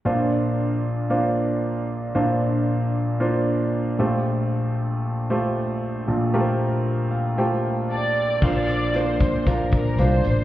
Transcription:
<<
  \new Staff \with { instrumentName = "Violin section" } { \time 4/4 \key bes \major \tempo 4 = 115 r1 | r1 | r1 | r2. d''4 |
c''16 d''8. c''4 bes'8 bes'8 c''4 | }
  \new Staff \with { instrumentName = "Grand piano" } { \time 4/4 \key bes \major << { r1 | r1 | r1 | r4. f''8 g''8 f''8 a''4 |
r1 | } \\ { <bes d' f' c''>4. r8 <bes d' f' c''>4. r8 | <bes d' f' c''>4. r8 <bes d' f' c''>4. <a f' g' c''>8~ | <a f' g' c''>4 r4 <a f' g' c''>4. r8 | <a f' g' bes' c''>4. r8 <a f' g' c''>4. r8 |
<bes d' f' c''>8. r16 <bes d' f' c''>8. r16 <bes d' f' c''>8. r16 <bes d' f' c''>8. r16 | } >> }
  \new Staff \with { instrumentName = "Grand piano" } { \clef bass \time 4/4 \key bes \major <bes,, bes,>1 | <bes,, bes,>2.~ <bes,, bes,>8 <bes,, bes,>8~ | <bes,, bes,>2.~ <bes,, bes,>8 <bes,, bes,>8~ | <bes,, bes,>2.~ <bes,, bes,>8 r8 |
bes,4. r2 r8 | }
  \new Staff \with { instrumentName = "Fingered electric bass" } { \clef bass \time 4/4 \key bes \major r1 | r1 | r1 | r1 |
bes,,4. bes,,4 bes,,8 c,8 a,,8 | }
  \new DrumStaff \with { instrumentName = "Drums" } \drummode { \time 4/4 r4 r4 r4 r4 | r4 r4 r4 r4 | r4 r4 r4 r4 | r4 r4 r4 r4 |
<cymc bd>8 hh8 hh8 <hh bd>8 <hh bd>8 <hh bd>8 hh8 hh8 | }
>>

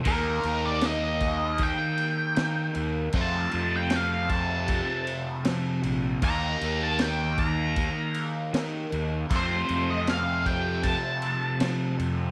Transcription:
<<
  \new Staff \with { instrumentName = "Lead electric guitar" } { \time 4/4 \key f \mixolydian \tempo 4 = 78 bes'8. d''16 ees''4 g''4. r8 | a''8. g''16 f''8 a''2 r8 | bes''8. a''16 g''8 bes''2 r8 | c''8. ees''16 f''8 g''8 a''4. r8 | }
  \new Staff \with { instrumentName = "Overdriven electric guitar" } { \time 4/4 \key f \mixolydian <ees bes ees' g'>1 | <f, c f a c' f'>1 | <ees bes ees' g'>1 | <f, c f a c' f'>1 | }
  \new Staff \with { instrumentName = "Fingered electric bass" } { \clef bass \time 4/4 \key f \mixolydian ees,8 ees,2 r8 ees8 ees,8 | f,8 f,2 r8 f8 bes,,8 | ees,8 ees,2 r8 ees8 ees,8 | f,8 f,2 r8 f8 f,8 | }
  \new DrumStaff \with { instrumentName = "Drums" } \drummode { \time 4/4 <cymc bd>8 cymc8 <cymc sn>8 <cymc bd>8 <cymc bd>8 cymc8 <cymc sn>8 cymc8 | <cymc bd>8 cymc8 <cymc sn>8 <cymc bd>8 <cymc bd>8 cymc8 <cymc sn>8 cymc8 | <cymc bd>8 cymc8 <cymc sn>8 <cymc bd>8 <cymc bd>8 cymc8 <cymc sn>8 cymc8 | <cymc bd>8 cymc8 <cymc sn>8 <cymc bd>8 <cymc bd>8 cymc8 <cymc sn>8 cymc8 | }
>>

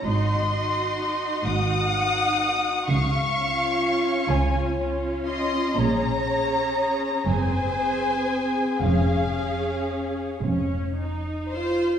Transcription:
<<
  \new Staff \with { instrumentName = "Violin section" } { \time 6/8 \key des \major \tempo 4. = 40 c'''4. ees'''4. | des'''4. aes''8 r8 c'''8 | bes''4. aes''4. | f''4. r4. | }
  \new Staff \with { instrumentName = "Violin section" } { \time 6/8 \key des \major ees''4. ges''4. | f''4. des''8 r8 ees''8 | des''4. c''4. | aes'4. r4 c''8 | }
  \new Staff \with { instrumentName = "Viola section" } { \time 6/8 \key des \major <ees' ges'>8 <ees' ges'>4. <ees' ges'>4 | r8 <des' f'>4. <des' f'>4 | <des' aes'>8 <des' aes'>4 <c' aes'>8 <c' aes'>4 | <des' aes'>8 <des' aes'>4 des'8 ees'8 f'8 | }
  \new Staff \with { instrumentName = "Cello section" } { \clef bass \time 6/8 \key des \major aes,4. aes,4. | des4. des4. | bes,4. ges,4. | f,4. f,4. | }
  \new Staff \with { instrumentName = "Double bass section" } { \clef bass \time 6/8 \key des \major aes,,4. aes,,4. | des,4. des,4. | bes,,4. ges,,4. | f,,4. f,,4. | }
>>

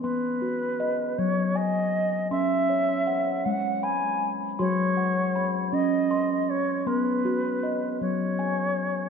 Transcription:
<<
  \new Staff \with { instrumentName = "Steel tongue drum" } { \time 6/8 \key fis \mixolydian \tempo 4. = 53 << { c'''8 fis'4. r4 | c'''8 cis''4. r4 | c'''8 fis''4. r4 | c'''8 fis'4. r4 | } \\ { b4 dis''4 gis''4 | cis'4 fis''4 b''4 | fis'4 b''4 c'''4 | r4 dis''4 gis''4 | } >> }
  \new Staff \with { instrumentName = "Steel tongue drum" } { \clef bass \time 6/8 \key fis \mixolydian r4. fis4. | r4. gis4. | fis8 r4 cis'4. | b8 r4 fis4. | }
  \new Staff \with { instrumentName = "Bansuri" } { \time 6/8 \key fis \mixolydian b'4. cis''8 dis''4 | e''4. fis''8 gis''8 r8 | cis''4. dis''4 cis''8 | b'4. cis''4. | }
>>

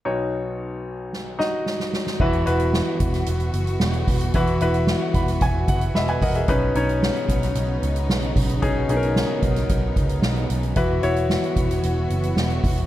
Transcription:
<<
  \new Staff \with { instrumentName = "Grand piano" } { \time 4/4 \key e \lydian \tempo 4 = 112 << { r1 | r1 | r4. b''8 gis''8 fis''8 <dis'' e'' b''>16 <b' gis''>16 <ais' dis'' fis''>16 <gis' e''>16~ | <gis' e''>16 r2. r8. |
r1 | r1 | } \\ { <dis' fis' cis''>4. r4 <dis' fis' dis''>4 r8 | <e' fis' b'>8 <e' fis' b'>4. r2 | <e' fis' b'>8 <e' fis' b'>4. r2 | <cis' dis' b'>8 <cis' dis' cis''>4. r2 |
<cis' dis' gis'>8 <cis' dis' gis' ais'>4. r2 | <e' fis' b'>8 <e' fis' cis''>4. r2 | } >> }
  \new Staff \with { instrumentName = "Grand piano" } { \clef bass \time 4/4 \key e \lydian <b,, b,>1 | e4. r2 r8 | e4. r2 r8 | b,4. r2 r8 |
b,4. r2 r8 | e4. r2 r8 | }
  \new Staff \with { instrumentName = "String section" } { \time 4/4 \key e \lydian << { r1 | <e fis'>1~ | <e fis'>1 | <cis dis'>1~ |
<cis dis'>1 | <e fis'>1 | } \\ { r1 | b1~ | b1~ | b1~ |
b1~ | b1 | } >> }
  \new Staff \with { instrumentName = "Picked electric bass" } { \clef bass \time 4/4 \key e \lydian r1 | e,,8 e,,8. r16 e,,8 e,,8 fis,,8 e,,8 e,,8 | e,,8 e,,8. r16 e,,8 e,,8 fis,,8 e,,8 e,,8 | b,,8 b,,8. r16 b,,8 b,,8 cis,8 b,,8 b,,8 |
b,,8 b,,8. r16 b,,8 b,,8 cis,8 b,,8 b,,8 | e,,8 e,,8. r16 e,,8 e,,8 fis,,8 e,,8 e,,8 | }
  \new DrumStaff \with { instrumentName = "Drums" } \drummode { \time 4/4 r4 r4 sn8 sn8 sn16 sn16 sn16 sn16 | <cymc bd>16 hh16 hh16 hh16 sn8 <hh bd>16 <hh sn>16 hh16 hh16 hh16 hh16 sn16 hh16 <hho bd>16 hh16 | <hh bd>16 hh16 hh16 hh16 sn8 <hh bd>16 <hh sn>16 <hh bd>8 <hh bd>16 hh16 sn16 hh16 <hho bd>16 hh16 | <hh bd>8 hh16 hh16 sn16 hh16 <hh bd>16 <hh sn>16 hh8 hh16 hh16 sn16 hh16 <hho bd>16 hh16 |
<hh bd>8 hh16 hh16 sn8 <hh bd>16 <hh sn>16 <hh bd>8 <hh bd>16 hh16 sn16 hh16 hh16 hh16 | <hh bd>8 hh16 hh16 sn16 hh16 <hh bd>16 <hh sn>16 hh8 hh16 hh16 sn16 hh16 <hho bd>16 hh16 | }
>>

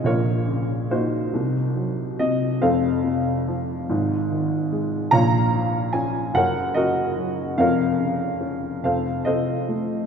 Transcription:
<<
  \new Staff \with { instrumentName = "Upright piano" } { \time 6/8 \key bes \minor \tempo 4. = 47 << { des''4 c''4. ees''8 | f''2~ f''8 r8 | bes''4 aes''8 ges''8 ees''4 | f''4. f''8 ees''4 | } \\ { <f' bes'>4 <ees' ges'>4. r8 | <a' c''>2~ <a' c''>8 r8 | <des'' f''>4. <bes' des''>8 <ges' bes'>4 | <bes' des''>4. <a' c''>8 <a' c''>4 | } >> }
  \new Staff \with { instrumentName = "Upright piano" } { \clef bass \time 6/8 \key bes \minor <bes,, bes,>8 des8 bes8 <c, c>8 ges8 c8 | <f,, f,>8 c8 f8 <aes,, aes,>8 ees8 aes8 | <bes,, bes,>8 f8 des'8 <ges,, ges,>8 des8 ges8 | <f,, f,>8 des8 des'8 <f,, f,>8 c8 a8 | }
>>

